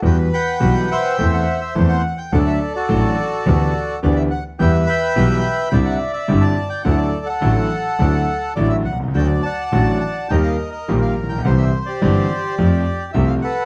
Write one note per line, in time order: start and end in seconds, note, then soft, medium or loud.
0.02 0.27 E2 medium
0.02 0.28 E2 medium
0.02 0.27 E3 medium
0.02 0.27 G3 medium
0.02 0.27 B3 medium
0.02 0.28 F#4 medium
0.02 1.16 B4 medium
0.02 0.18 G5 medium
0.33 1.16 F#5 medium
0.33 0.90 G5 medium
0.33 0.87 B5 medium
0.60 0.85 B1 medium
0.60 0.86 B1 medium
0.60 0.85 B2 medium
0.60 0.85 E3 medium
0.60 0.85 G3 medium
0.60 0.85 B3 medium
0.60 0.85 F#4 medium
0.91 2.02 C5 medium
0.91 1.60 E5 medium
0.91 1.31 G5 medium
1.18 1.43 E2 medium
1.18 1.44 E2 medium
1.18 1.43 E3 medium
1.18 1.43 A3 medium
1.18 1.43 C4 medium
1.18 1.43 A4 medium
1.34 1.60 F#5 medium
1.61 1.74 E5 medium
1.75 2.00 E2 medium
1.75 2.00 E3 medium
1.75 2.00 A3 medium
1.75 2.00 C4 medium
1.75 2.00 A4 medium
1.89 2.19 F#5 medium
2.18 2.32 G5 medium
2.32 2.57 D2 medium
2.32 2.57 D3 medium
2.32 2.57 F#3 medium
2.32 2.57 A3 medium
2.32 2.57 D4 medium
2.32 2.57 A4 medium
2.32 2.75 A4 medium
2.32 2.73 D5 medium
2.32 2.38 F#5 medium
2.46 2.59 E5 medium
2.74 3.99 F#4 medium
2.74 4.00 A4 medium
2.74 3.99 D5 medium
2.89 3.13 A1 medium
2.89 3.14 A1 medium
2.89 3.13 A2 medium
2.89 3.13 F#3 medium
2.89 3.13 A3 medium
2.89 3.13 D4 medium
2.89 3.13 A4 medium
3.46 3.70 D2 medium
3.46 3.71 D2 medium
3.46 3.70 D3 medium
3.46 3.70 E3 medium
3.46 3.70 B3 medium
3.46 3.70 D4 medium
3.46 3.70 G4 medium
4.03 4.27 D2 medium
4.03 4.28 D2 medium
4.03 4.27 D3 medium
4.03 4.27 E3 medium
4.03 4.27 B3 medium
4.03 4.27 D4 medium
4.03 4.27 G4 medium
4.03 4.18 D5 medium
4.16 4.23 E5 medium
4.31 4.44 F#5 medium
4.59 4.83 E2 medium
4.59 4.84 E2 medium
4.59 4.84 E3 medium
4.59 4.83 G3 medium
4.59 4.84 B3 medium
4.59 4.84 G4 medium
4.59 5.69 B4 medium
4.59 4.88 E5 medium
4.59 4.72 G5 medium
4.87 5.69 E5 medium
4.87 5.69 G5 medium
4.87 5.74 B5 medium
5.16 5.40 B1 medium
5.16 5.40 B2 medium
5.16 5.40 E3 medium
5.16 5.40 G3 medium
5.16 5.40 B3 medium
5.16 5.40 G4 medium
5.71 5.96 C2 medium
5.71 5.96 C3 medium
5.71 5.96 D3 medium
5.71 5.96 G3 medium
5.71 5.96 C4 medium
5.71 5.96 E4 medium
5.71 6.82 D5 medium
5.71 6.12 E5 medium
5.71 5.77 G5 medium
5.85 5.98 F#5 medium
6.13 6.43 E5 medium
6.28 6.52 G1 medium
6.28 6.53 G1 medium
6.28 6.52 G2 medium
6.28 6.52 D3 medium
6.28 6.52 G3 medium
6.28 6.53 C4 medium
6.28 6.52 E4 medium
6.41 6.68 A5 medium
6.70 6.84 G5 medium
6.83 7.09 D2 medium
6.83 7.09 D3 medium
6.83 7.09 F#3 medium
6.83 7.09 A3 medium
6.83 7.09 E4 medium
6.83 7.28 A4 medium
6.83 6.98 F#5 medium
6.98 7.28 D5 medium
7.26 8.54 A4 medium
7.26 8.53 F#5 medium
7.42 7.66 A1 medium
7.42 7.66 A2 medium
7.42 7.66 D3 medium
7.42 7.66 F#3 medium
7.42 7.66 A3 medium
7.42 7.66 E4 medium
7.99 8.24 D2 medium
7.99 8.24 D3 medium
7.99 8.24 F#3 medium
7.99 8.24 A3 medium
7.99 8.24 E4 medium
8.56 8.82 A1 medium
8.56 8.82 A2 medium
8.56 8.82 D3 medium
8.56 8.82 F#3 medium
8.56 8.82 A3 medium
8.56 8.82 E4 medium
8.56 8.72 D5 medium
8.69 8.76 E5 medium
8.85 9.14 C2 medium
8.85 8.98 F#5 medium
8.93 9.00 B1 soft
9.00 9.08 C2 medium
9.08 9.15 C#2 medium
9.14 9.40 D2 medium
9.14 9.40 D3 medium
9.14 9.40 F#3 medium
9.14 9.40 A3 medium
9.14 9.40 F#4 medium
9.14 9.44 D5 medium
9.14 9.27 G5 medium
9.43 10.28 D5 medium
9.43 10.28 F#5 medium
9.43 9.97 A5 medium
9.72 9.97 A1 medium
9.72 9.97 A2 medium
9.72 9.97 D3 medium
9.72 9.97 F#3 medium
9.72 9.97 A3 medium
9.72 9.97 F#4 medium
10.01 10.31 A5 medium
10.29 10.55 D#2 medium
10.29 10.55 D#3 medium
10.29 10.55 G3 medium
10.29 10.55 A#3 medium
10.29 10.55 G4 medium
10.29 11.42 A#4 medium
10.29 10.70 D#5 medium
10.29 10.36 G5 medium
10.43 10.57 F5 medium
10.72 10.99 D#5 medium
10.88 11.13 A#1 medium
10.88 11.13 A#2 medium
10.88 11.12 D#3 medium
10.88 11.12 G3 medium
10.88 11.13 A#3 medium
10.88 11.13 G4 medium
11.02 11.15 F5 medium
11.18 11.45 A#1 medium
11.24 11.31 A1 soft
11.29 11.39 A#1 medium
11.29 11.43 G5 medium
11.38 11.45 B1 medium
11.43 11.69 C2 medium
11.43 11.70 C2 medium
11.43 11.69 C3 medium
11.43 11.69 E3 medium
11.43 11.69 G3 medium
11.43 11.69 C4 medium
11.43 11.69 G4 medium
11.43 12.55 C5 medium
11.43 11.50 F#5 medium
11.58 11.71 E5 medium
11.86 13.12 G4 medium
11.86 13.10 D5 medium
12.01 12.26 G1 medium
12.01 12.26 G2 medium
12.01 12.26 E3 medium
12.01 12.26 G3 medium
12.01 12.26 C4 medium
12.01 12.26 G4 medium
12.58 12.82 F2 medium
12.58 12.83 F2 medium
12.58 12.82 F3 medium
12.58 12.82 A3 medium
12.58 12.83 C4 medium
12.58 12.83 G4 medium
13.13 13.39 C2 medium
13.13 13.39 C3 medium
13.13 13.38 F3 medium
13.13 13.39 A3 medium
13.13 13.39 C4 medium
13.13 13.39 G4 medium
13.13 13.29 E5 medium
13.27 13.34 F5 medium
13.42 13.65 A4 medium
13.42 13.65 B4 medium
13.42 13.65 F#5 medium